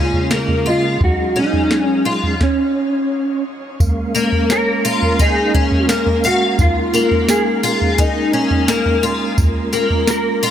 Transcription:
Already playing: C#3 G#3 A#3 C#4 F4 G#4
0.13 floor tom
0.31 A#3, snare
0.48 floor tom
0.66 F4 D#5
1.01 F#3 D#4 F#4, kick, floor tom
1.36 C#4 D#4
1.53 floor tom
1.71 snare
1.87 C#4
2.05 F4
2.23 floor tom
2.41 C#4, kick, snare
3.80 G#3 A#3 C#4 A#4 F5, kick, floor tom, tambourine
4.15 A#3, tambourine
4.32 floor tom
4.50 A#4 C#5, snare, tambourine
4.85 F4, tambourine
5.02 floor tom
5.19 D#4 G#4, kick, tambourine
5.55 C#4, kick
5.72 floor tom
5.89 A#3, snare, tambourine
6.06 floor tom
6.24 F#4 F5, tambourine
6.58 D#4 F4, kick, floor tom, tambourine
6.94 A#3, tambourine
7.11 floor tom
7.29 G#4, snare, tambourine
7.63 F4, tambourine
7.82 floor tom
7.98 D#4 G#5, kick, tambourine
8.33 C#4
8.51 floor tom
8.68 A#3, snare, tambourine
8.86 floor tom
9.03 F4, tambourine
9.38 F4, kick, floor tom, tambourine
9.73 A#3, tambourine
9.90 floor tom
10.07 A#4, snare, tambourine
10.43 F4, tambourine

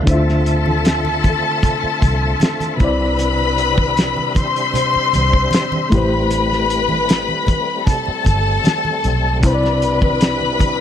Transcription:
0.03 D3 D4 E4, kick, closed hi-hat
0.07 D2 D3 A3 C4 F4 A4 C5 E5 A5
0.13 F4
0.29 snare
0.46 closed hi-hat
0.66 high conga
0.85 snare, closed hi-hat, muted conga
1.05 muted conga, high conga
1.24 kick, closed hi-hat, high conga
1.62 kick, closed hi-hat, low conga
1.84 muted fingered electric bass stroke
2.02 C2, kick, closed hi-hat, high conga
2.40 snare, closed hi-hat, muted conga, high conga
2.60 closed hi-hat, high conga
2.77 C2 C3 G3 C4 D4 E4 B4 B5, kick, closed hi-hat, low conga
2.83 C5 D5
3.18 closed hi-hat, muted conga
3.39 muted conga
3.58 closed hi-hat
3.77 kick, high conga
3.97 snare, closed hi-hat, muted conga
4.17 muted conga, high conga
4.35 C5 C6, kick, closed hi-hat, high conga
4.56 closed hi-hat
4.74 closed hi-hat, muted conga, low conga
4.94 muted fingered electric bass stroke, muted conga
5.13 C2, closed hi-hat, high conga
5.33 kick
5.51 snare, closed hi-hat, muted conga, high conga
5.72 muted conga, high conga
5.90 A1 G3 A3 C4 E4 B4 B5, kick, closed hi-hat, low conga
5.94 G4 B4 C5
6.30 closed hi-hat, muted conga
6.52 snare
6.70 closed hi-hat
6.89 high conga
7.09 snare, closed hi-hat, muted conga
7.28 high conga
7.47 kick, closed hi-hat, high conga
7.86 A4 A5, kick, closed hi-hat, low conga
8.06 muted fingered electric bass stroke, muted conga
8.25 G1, kick, closed hi-hat, high conga
8.64 snare, closed hi-hat, muted conga, high conga
8.85 muted conga, high conga
9.04 B1, closed hi-hat, low conga
9.40 C2 C3 C4 D4 E4, kick, closed hi-hat, muted conga
9.44 C4 E4 B4 C5 B5
9.55 D5
9.63 snare, muted conga
9.82 closed hi-hat
10.02 kick, high conga
10.21 snare, closed hi-hat, muted conga
10.41 high conga
10.59 kick, closed hi-hat, high conga

